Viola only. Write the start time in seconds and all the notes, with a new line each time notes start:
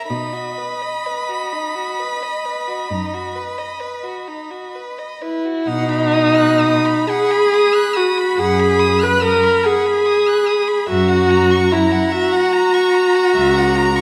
Already playing: E5
0.09 D#5
5.22 E4
5.67 D#4
7.06 G#4
7.96 F#4
8.38 G#4
9.03 B4
9.24 A#4
9.66 G#4
10.89 F#4
11.72 E4
12.12 F#4